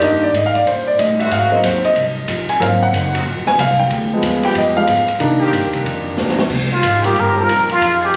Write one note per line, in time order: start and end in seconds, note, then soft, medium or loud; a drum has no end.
0.00 0.32 G2 medium
0.00 0.31 D#3 loud
0.00 0.25 D#3 medium
0.00 0.24 G3 soft
0.00 0.31 A#3 loud
0.00 0.26 A#3 medium
0.00 0.24 A#3 medium
0.00 0.31 C4 loud
0.00 0.26 D4 medium
0.00 0.31 G4 loud
0.00 0.23 D#5 medium
0.00 ride medium
0.23 0.34 D5 medium
0.33 0.65 G#2 medium
0.33 0.55 C3 medium
0.33 0.56 G3 medium
0.33 0.56 A#3 medium
0.33 0.57 D#4 medium
0.33 hi-hat pedal medium
0.33 ride medium
0.37 0.46 D#5 medium
0.46 0.56 F5 medium
0.55 0.66 D5 medium
0.55 ride soft
0.65 0.97 A#2 medium
0.65 0.88 C3 medium
0.65 0.88 G3 soft
0.65 0.89 A#3 medium
0.65 0.89 D#4 medium
0.65 0.87 C5 medium
0.65 ride medium
0.87 0.98 D5 medium
0.98 1.30 A2 medium
0.98 1.20 C3 medium
0.98 1.21 G3 medium
0.98 1.21 A#3 medium
0.98 1.22 D#4 medium
0.98 1.19 D#5 medium
0.98 hi-hat pedal medium
0.98 ride medium
1.19 1.61 D#3 loud
1.19 1.61 G#3 medium
1.19 1.61 C4 loud
1.19 1.61 F#4 loud
1.19 1.31 E5 medium
1.19 ride medium
1.31 1.53 G#2 soft
1.31 1.63 G#2 medium
1.31 1.53 F#3 soft
1.31 1.54 C4 soft
1.31 1.54 D#4 medium
1.31 1.52 F5 medium
1.31 ride medium
1.51 1.70 F#3 medium
1.51 1.71 A#3 soft
1.51 1.71 C4 medium
1.51 1.63 D#5 medium
1.63 1.94 D#2 medium
1.63 1.85 G#2 medium
1.63 1.78 D#3 medium
1.63 1.86 F#3 medium
1.63 1.77 G#3 medium
1.63 1.77 C4 medium
1.63 1.86 C4 medium
1.63 1.87 D#4 medium
1.63 1.78 F#4 medium
1.63 1.84 C5 medium
1.63 hi-hat pedal medium
1.63 ride medium
1.84 2.26 D#5 medium
1.84 ride soft
1.95 2.27 C2 medium
1.95 2.17 G#2 medium
1.95 2.18 F#3 soft
1.95 2.19 C4 medium
1.95 2.19 D#4 medium
1.95 ride medium
2.28 2.48 A#1 medium
2.28 2.50 G#2 medium
2.28 2.51 F#3 medium
2.28 2.51 C4 medium
2.28 2.51 D#4 medium
2.28 hi-hat pedal medium
2.28 ride medium
2.49 2.61 G#5 medium
2.49 muted upright bass stroke soft
2.49 ride medium
2.59 2.92 G#1 medium
2.59 2.82 G#2 soft
2.59 2.84 F#3 medium
2.59 2.83 F#3 medium
2.59 2.85 A#3 medium
2.59 2.83 C4 medium
2.59 2.85 C4 medium
2.59 2.83 D#4 medium
2.59 2.82 F5 medium
2.59 ride medium
2.83 3.12 F#5 medium
2.93 3.24 F#1 loud
2.93 3.15 G#2 medium
2.93 3.15 F#3 medium
2.93 3.16 C4 medium
2.93 3.16 D#4 medium
2.93 hi-hat pedal medium
2.93 ride medium
3.14 3.23 D#3 medium
3.14 3.23 G#3 medium
3.14 3.22 C4 medium
3.14 3.22 F#4 loud
3.14 ride medium
3.25 3.57 A#1 medium
3.25 3.47 G#2 medium
3.25 3.48 F#3 medium
3.25 3.48 C4 medium
3.25 3.49 D#4 medium
3.47 3.58 G#5 loud
3.47 snare medium
3.57 3.89 C2 medium
3.57 3.80 G#2 medium
3.57 3.80 F#3 medium
3.57 3.81 C4 medium
3.57 3.81 D#4 medium
3.57 3.79 F5 medium
3.57 hi-hat pedal medium
3.57 ride medium
3.79 4.09 G5 medium
3.90 4.21 D2 medium
3.90 4.12 G3 soft
3.90 4.13 B3 medium
3.90 4.13 F4 medium
3.90 4.14 G#4 medium
3.90 ride medium
4.13 4.74 F3 medium
4.13 4.75 G#3 soft
4.13 4.75 B3 medium
4.22 4.54 D#2 medium
4.22 4.45 G3 medium
4.22 4.45 B3 medium
4.22 4.46 F4 medium
4.22 4.46 G#4 medium
4.22 hi-hat pedal medium
4.22 ride medium
4.42 4.85 F3 medium
4.42 4.85 G#3 medium
4.42 4.85 B3 medium
4.42 4.85 G4 loud
4.42 4.56 G5 medium
4.42 ride medium
4.54 4.86 F2 medium
4.54 4.77 G3 medium
4.54 4.78 B3 medium
4.54 4.78 F4 medium
4.54 4.79 G#4 medium
4.54 4.77 D#5 medium
4.54 ride medium
4.76 4.87 F3 medium
4.76 4.87 G#3 soft
4.76 4.87 B3 medium
4.76 5.07 F5 medium
4.87 5.07 G#2 medium
4.87 5.09 G3 medium
4.87 5.10 B3 medium
4.87 5.10 F4 medium
4.87 5.11 G#4 medium
4.87 hi-hat pedal medium
4.87 ride medium
5.07 muted upright bass stroke soft
5.07 ride medium
5.19 5.50 C3 medium
5.19 5.42 C3 medium
5.19 6.46 D#3 medium
5.19 6.46 A#3 medium
5.19 5.43 A#3 medium
5.19 6.47 D4 medium
5.19 5.43 D#4 medium
5.19 ride medium
5.23 5.44 G4 medium
5.40 5.82 D#3 loud
5.40 5.83 A#3 loud
5.40 5.82 C4 loud
5.40 5.82 G4 loud
5.51 5.62 G2 medium
5.51 5.75 C3 medium
5.51 5.75 A#3 medium
5.51 5.75 D#4 medium
5.51 5.76 G4 medium
5.51 hi-hat pedal medium
5.51 ride medium
5.62 5.73 D#2 medium
5.73 5.84 C2 medium
5.73 ride medium
5.84 6.16 F2 medium
5.84 6.07 C3 soft
5.84 6.07 A#3 medium
5.84 6.08 D#4 medium
5.84 6.08 G4 medium
5.84 ride medium
6.17 6.49 D#2 medium
6.17 6.40 C3 medium
6.17 6.40 A#3 medium
6.17 6.40 D#4 medium
6.17 6.41 G4 medium
6.17 snare medium
6.17 hi-hat pedal medium
6.29 snare medium
6.39 snare medium
6.50 6.81 C2 medium
6.50 6.72 C3 medium
6.50 6.73 A#3 medium
6.50 6.74 D#4 medium
6.50 kick medium
6.50 crash medium
6.54 6.74 G4 medium
6.72 7.07 F4 medium
6.82 7.14 G#1 medium
6.82 7.04 C3 medium
6.82 7.05 A#3 medium
6.82 7.05 D#4 medium
6.82 7.06 G4 medium
6.82 hi-hat pedal medium
6.82 ride medium
7.02 7.45 D#3 loud
7.02 7.15 G3 medium
7.02 7.45 A#3 loud
7.02 7.45 C4 loud
7.02 7.14 C4 medium
7.02 7.15 F4 medium
7.02 7.45 G4 loud
7.02 7.21 G4 medium
7.02 7.15 A#4 medium
7.02 ride medium
7.15 7.47 G1 medium
7.15 7.37 C3 soft
7.15 7.37 A#3 medium
7.15 7.38 D#4 medium
7.15 7.38 G4 medium
7.15 ride medium
7.20 7.37 A#4 medium
7.36 7.46 G3 medium
7.36 7.47 C4 medium
7.36 7.47 F4 medium
7.36 7.46 A#4 medium
7.36 7.71 A#4 medium
7.48 7.79 A#1 medium
7.48 7.70 C3 medium
7.48 7.70 A#3 medium
7.48 7.71 D#4 medium
7.48 7.71 G4 medium
7.48 hi-hat pedal medium
7.48 ride medium
7.69 8.00 F4 medium
7.69 ride medium
7.80 8.12 F2 medium
7.80 8.03 F3 soft
7.80 8.03 C4 soft
7.80 8.04 D#4 medium
7.80 8.04 G#4 soft
7.80 ride medium
7.99 8.08 F3 medium
7.99 8.08 C4 medium
7.99 8.08 D#4 medium
7.99 8.09 G#4 loud
8.05 8.16 G4 medium
8.13 8.16 D2 medium
8.13 8.16 F3 medium